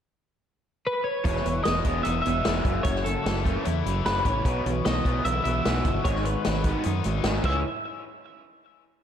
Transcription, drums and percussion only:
0, 0, Header, 1, 2, 480
1, 0, Start_track
1, 0, Tempo, 398671
1, 1513, Time_signature, 4, 2, 24, 8
1, 10878, End_track
2, 0, Start_track
2, 0, Title_t, "Drums"
2, 1504, Note_on_c, 9, 42, 95
2, 1506, Note_on_c, 9, 36, 109
2, 1624, Note_off_c, 9, 42, 0
2, 1626, Note_off_c, 9, 36, 0
2, 1634, Note_on_c, 9, 38, 29
2, 1752, Note_on_c, 9, 42, 70
2, 1755, Note_off_c, 9, 38, 0
2, 1873, Note_off_c, 9, 42, 0
2, 1989, Note_on_c, 9, 42, 90
2, 1991, Note_on_c, 9, 38, 110
2, 2109, Note_off_c, 9, 42, 0
2, 2112, Note_off_c, 9, 38, 0
2, 2222, Note_on_c, 9, 42, 70
2, 2227, Note_on_c, 9, 36, 79
2, 2343, Note_off_c, 9, 42, 0
2, 2347, Note_off_c, 9, 36, 0
2, 2464, Note_on_c, 9, 42, 90
2, 2585, Note_off_c, 9, 42, 0
2, 2715, Note_on_c, 9, 42, 70
2, 2836, Note_off_c, 9, 42, 0
2, 2948, Note_on_c, 9, 42, 92
2, 2950, Note_on_c, 9, 38, 115
2, 3068, Note_off_c, 9, 42, 0
2, 3071, Note_off_c, 9, 38, 0
2, 3188, Note_on_c, 9, 42, 71
2, 3190, Note_on_c, 9, 36, 87
2, 3309, Note_off_c, 9, 42, 0
2, 3310, Note_off_c, 9, 36, 0
2, 3426, Note_on_c, 9, 42, 97
2, 3432, Note_on_c, 9, 36, 105
2, 3546, Note_off_c, 9, 42, 0
2, 3553, Note_off_c, 9, 36, 0
2, 3558, Note_on_c, 9, 38, 32
2, 3678, Note_off_c, 9, 38, 0
2, 3680, Note_on_c, 9, 42, 70
2, 3800, Note_off_c, 9, 42, 0
2, 3927, Note_on_c, 9, 42, 91
2, 3930, Note_on_c, 9, 38, 110
2, 4048, Note_off_c, 9, 42, 0
2, 4050, Note_off_c, 9, 38, 0
2, 4159, Note_on_c, 9, 36, 85
2, 4165, Note_on_c, 9, 42, 61
2, 4280, Note_off_c, 9, 36, 0
2, 4286, Note_off_c, 9, 42, 0
2, 4398, Note_on_c, 9, 42, 82
2, 4518, Note_off_c, 9, 42, 0
2, 4651, Note_on_c, 9, 42, 68
2, 4772, Note_off_c, 9, 42, 0
2, 4886, Note_on_c, 9, 42, 89
2, 4888, Note_on_c, 9, 38, 107
2, 5006, Note_off_c, 9, 42, 0
2, 5008, Note_off_c, 9, 38, 0
2, 5119, Note_on_c, 9, 42, 65
2, 5120, Note_on_c, 9, 36, 84
2, 5239, Note_off_c, 9, 42, 0
2, 5240, Note_off_c, 9, 36, 0
2, 5359, Note_on_c, 9, 36, 111
2, 5362, Note_on_c, 9, 42, 97
2, 5480, Note_off_c, 9, 36, 0
2, 5482, Note_off_c, 9, 42, 0
2, 5611, Note_on_c, 9, 42, 70
2, 5732, Note_off_c, 9, 42, 0
2, 5844, Note_on_c, 9, 42, 85
2, 5846, Note_on_c, 9, 38, 111
2, 5964, Note_off_c, 9, 42, 0
2, 5967, Note_off_c, 9, 38, 0
2, 6083, Note_on_c, 9, 36, 85
2, 6086, Note_on_c, 9, 42, 70
2, 6203, Note_off_c, 9, 36, 0
2, 6207, Note_off_c, 9, 42, 0
2, 6322, Note_on_c, 9, 42, 97
2, 6442, Note_off_c, 9, 42, 0
2, 6564, Note_on_c, 9, 42, 74
2, 6684, Note_off_c, 9, 42, 0
2, 6806, Note_on_c, 9, 42, 92
2, 6809, Note_on_c, 9, 38, 111
2, 6926, Note_off_c, 9, 42, 0
2, 6929, Note_off_c, 9, 38, 0
2, 7040, Note_on_c, 9, 42, 73
2, 7043, Note_on_c, 9, 36, 88
2, 7161, Note_off_c, 9, 42, 0
2, 7164, Note_off_c, 9, 36, 0
2, 7284, Note_on_c, 9, 42, 106
2, 7285, Note_on_c, 9, 36, 115
2, 7404, Note_off_c, 9, 42, 0
2, 7405, Note_off_c, 9, 36, 0
2, 7412, Note_on_c, 9, 38, 31
2, 7528, Note_on_c, 9, 42, 76
2, 7533, Note_off_c, 9, 38, 0
2, 7648, Note_off_c, 9, 42, 0
2, 7760, Note_on_c, 9, 42, 90
2, 7763, Note_on_c, 9, 38, 113
2, 7881, Note_off_c, 9, 42, 0
2, 7883, Note_off_c, 9, 38, 0
2, 7994, Note_on_c, 9, 42, 68
2, 8000, Note_on_c, 9, 36, 91
2, 8114, Note_off_c, 9, 42, 0
2, 8121, Note_off_c, 9, 36, 0
2, 8230, Note_on_c, 9, 42, 91
2, 8350, Note_off_c, 9, 42, 0
2, 8475, Note_on_c, 9, 42, 62
2, 8595, Note_off_c, 9, 42, 0
2, 8713, Note_on_c, 9, 42, 85
2, 8715, Note_on_c, 9, 38, 120
2, 8833, Note_off_c, 9, 42, 0
2, 8836, Note_off_c, 9, 38, 0
2, 8955, Note_on_c, 9, 49, 88
2, 8956, Note_on_c, 9, 36, 112
2, 9075, Note_off_c, 9, 49, 0
2, 9077, Note_off_c, 9, 36, 0
2, 10878, End_track
0, 0, End_of_file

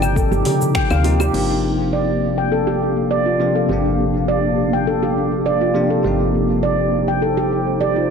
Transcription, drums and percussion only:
0, 0, Header, 1, 3, 480
1, 0, Start_track
1, 0, Key_signature, -2, "minor"
1, 0, Tempo, 588235
1, 1093, Time_signature, 4, 2, 24, 8
1, 6612, End_track
2, 0, Start_track
2, 0, Title_t, "Darbuka"
2, 23, Note_on_c, 9, 62, 49
2, 105, Note_off_c, 9, 62, 0
2, 375, Note_on_c, 9, 64, 93
2, 378, Note_on_c, 9, 63, 64
2, 382, Note_on_c, 9, 62, 71
2, 457, Note_off_c, 9, 64, 0
2, 460, Note_off_c, 9, 63, 0
2, 463, Note_off_c, 9, 62, 0
2, 505, Note_on_c, 9, 64, 81
2, 586, Note_off_c, 9, 64, 0
2, 740, Note_on_c, 9, 63, 76
2, 821, Note_off_c, 9, 63, 0
2, 980, Note_on_c, 9, 63, 75
2, 1062, Note_off_c, 9, 63, 0
2, 6612, End_track
3, 0, Start_track
3, 0, Title_t, "Drums"
3, 17, Note_on_c, 9, 75, 62
3, 22, Note_on_c, 9, 82, 66
3, 99, Note_off_c, 9, 75, 0
3, 104, Note_off_c, 9, 82, 0
3, 133, Note_on_c, 9, 36, 101
3, 138, Note_on_c, 9, 82, 55
3, 215, Note_off_c, 9, 36, 0
3, 220, Note_off_c, 9, 82, 0
3, 263, Note_on_c, 9, 82, 32
3, 345, Note_off_c, 9, 82, 0
3, 369, Note_on_c, 9, 46, 90
3, 451, Note_off_c, 9, 46, 0
3, 502, Note_on_c, 9, 82, 64
3, 583, Note_off_c, 9, 82, 0
3, 611, Note_on_c, 9, 26, 98
3, 613, Note_on_c, 9, 36, 98
3, 616, Note_on_c, 9, 82, 52
3, 693, Note_off_c, 9, 26, 0
3, 695, Note_off_c, 9, 36, 0
3, 698, Note_off_c, 9, 82, 0
3, 738, Note_on_c, 9, 75, 73
3, 743, Note_on_c, 9, 82, 31
3, 820, Note_off_c, 9, 75, 0
3, 825, Note_off_c, 9, 82, 0
3, 852, Note_on_c, 9, 46, 91
3, 934, Note_off_c, 9, 46, 0
3, 979, Note_on_c, 9, 75, 60
3, 984, Note_on_c, 9, 82, 64
3, 1060, Note_off_c, 9, 75, 0
3, 1065, Note_off_c, 9, 82, 0
3, 1095, Note_on_c, 9, 49, 72
3, 1177, Note_off_c, 9, 49, 0
3, 6612, End_track
0, 0, End_of_file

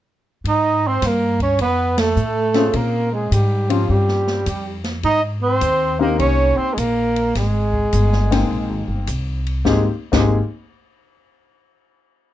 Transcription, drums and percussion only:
0, 0, Header, 1, 2, 480
1, 0, Start_track
1, 0, Key_signature, -4, "major"
1, 0, Tempo, 574713
1, 374, Time_signature, 4, 2, 24, 8
1, 10303, End_track
2, 0, Start_track
2, 0, Title_t, "Drums"
2, 373, Note_on_c, 9, 36, 16
2, 378, Note_on_c, 9, 51, 47
2, 457, Note_off_c, 9, 36, 0
2, 462, Note_off_c, 9, 51, 0
2, 850, Note_on_c, 9, 38, 30
2, 851, Note_on_c, 9, 36, 17
2, 852, Note_on_c, 9, 44, 55
2, 852, Note_on_c, 9, 51, 54
2, 934, Note_off_c, 9, 36, 0
2, 934, Note_off_c, 9, 38, 0
2, 936, Note_off_c, 9, 44, 0
2, 936, Note_off_c, 9, 51, 0
2, 1168, Note_on_c, 9, 36, 45
2, 1169, Note_on_c, 9, 51, 37
2, 1252, Note_off_c, 9, 36, 0
2, 1253, Note_off_c, 9, 51, 0
2, 1325, Note_on_c, 9, 51, 53
2, 1329, Note_on_c, 9, 36, 20
2, 1409, Note_off_c, 9, 51, 0
2, 1412, Note_off_c, 9, 36, 0
2, 1649, Note_on_c, 9, 38, 67
2, 1651, Note_on_c, 9, 51, 58
2, 1733, Note_off_c, 9, 38, 0
2, 1735, Note_off_c, 9, 51, 0
2, 1806, Note_on_c, 9, 44, 40
2, 1889, Note_off_c, 9, 44, 0
2, 2121, Note_on_c, 9, 38, 38
2, 2123, Note_on_c, 9, 51, 40
2, 2205, Note_off_c, 9, 38, 0
2, 2206, Note_off_c, 9, 51, 0
2, 2284, Note_on_c, 9, 51, 50
2, 2287, Note_on_c, 9, 36, 16
2, 2367, Note_off_c, 9, 51, 0
2, 2370, Note_off_c, 9, 36, 0
2, 2769, Note_on_c, 9, 36, 21
2, 2772, Note_on_c, 9, 44, 52
2, 2772, Note_on_c, 9, 51, 55
2, 2853, Note_off_c, 9, 36, 0
2, 2856, Note_off_c, 9, 44, 0
2, 2856, Note_off_c, 9, 51, 0
2, 3090, Note_on_c, 9, 51, 54
2, 3174, Note_off_c, 9, 51, 0
2, 3250, Note_on_c, 9, 36, 20
2, 3333, Note_off_c, 9, 36, 0
2, 3411, Note_on_c, 9, 38, 25
2, 3494, Note_off_c, 9, 38, 0
2, 3569, Note_on_c, 9, 38, 36
2, 3652, Note_off_c, 9, 38, 0
2, 3726, Note_on_c, 9, 44, 54
2, 3726, Note_on_c, 9, 51, 52
2, 3727, Note_on_c, 9, 36, 17
2, 3810, Note_off_c, 9, 36, 0
2, 3810, Note_off_c, 9, 44, 0
2, 3810, Note_off_c, 9, 51, 0
2, 4043, Note_on_c, 9, 38, 43
2, 4045, Note_on_c, 9, 51, 40
2, 4127, Note_off_c, 9, 38, 0
2, 4128, Note_off_c, 9, 51, 0
2, 4203, Note_on_c, 9, 51, 44
2, 4205, Note_on_c, 9, 36, 22
2, 4286, Note_off_c, 9, 51, 0
2, 4288, Note_off_c, 9, 36, 0
2, 4686, Note_on_c, 9, 44, 51
2, 4686, Note_on_c, 9, 51, 53
2, 4688, Note_on_c, 9, 36, 23
2, 4770, Note_off_c, 9, 44, 0
2, 4770, Note_off_c, 9, 51, 0
2, 4772, Note_off_c, 9, 36, 0
2, 5172, Note_on_c, 9, 36, 21
2, 5174, Note_on_c, 9, 51, 48
2, 5256, Note_off_c, 9, 36, 0
2, 5257, Note_off_c, 9, 51, 0
2, 5657, Note_on_c, 9, 36, 17
2, 5659, Note_on_c, 9, 44, 44
2, 5659, Note_on_c, 9, 51, 58
2, 5740, Note_off_c, 9, 36, 0
2, 5743, Note_off_c, 9, 44, 0
2, 5743, Note_off_c, 9, 51, 0
2, 5981, Note_on_c, 9, 51, 41
2, 6065, Note_off_c, 9, 51, 0
2, 6137, Note_on_c, 9, 36, 22
2, 6139, Note_on_c, 9, 38, 34
2, 6140, Note_on_c, 9, 51, 50
2, 6221, Note_off_c, 9, 36, 0
2, 6222, Note_off_c, 9, 38, 0
2, 6224, Note_off_c, 9, 51, 0
2, 6458, Note_on_c, 9, 36, 45
2, 6542, Note_off_c, 9, 36, 0
2, 6619, Note_on_c, 9, 44, 52
2, 6619, Note_on_c, 9, 51, 53
2, 6620, Note_on_c, 9, 36, 15
2, 6702, Note_off_c, 9, 44, 0
2, 6702, Note_off_c, 9, 51, 0
2, 6704, Note_off_c, 9, 36, 0
2, 6787, Note_on_c, 9, 38, 29
2, 6871, Note_off_c, 9, 38, 0
2, 6948, Note_on_c, 9, 38, 37
2, 6949, Note_on_c, 9, 51, 60
2, 7032, Note_off_c, 9, 38, 0
2, 7032, Note_off_c, 9, 51, 0
2, 7102, Note_on_c, 9, 36, 19
2, 7185, Note_off_c, 9, 36, 0
2, 7577, Note_on_c, 9, 44, 45
2, 7577, Note_on_c, 9, 51, 51
2, 7580, Note_on_c, 9, 36, 15
2, 7661, Note_off_c, 9, 44, 0
2, 7661, Note_off_c, 9, 51, 0
2, 7664, Note_off_c, 9, 36, 0
2, 7905, Note_on_c, 9, 51, 39
2, 7989, Note_off_c, 9, 51, 0
2, 8062, Note_on_c, 9, 36, 74
2, 8064, Note_on_c, 9, 38, 65
2, 8145, Note_off_c, 9, 36, 0
2, 8147, Note_off_c, 9, 38, 0
2, 8458, Note_on_c, 9, 38, 68
2, 8458, Note_on_c, 9, 49, 72
2, 8459, Note_on_c, 9, 36, 78
2, 8542, Note_off_c, 9, 38, 0
2, 8542, Note_off_c, 9, 49, 0
2, 8543, Note_off_c, 9, 36, 0
2, 10303, End_track
0, 0, End_of_file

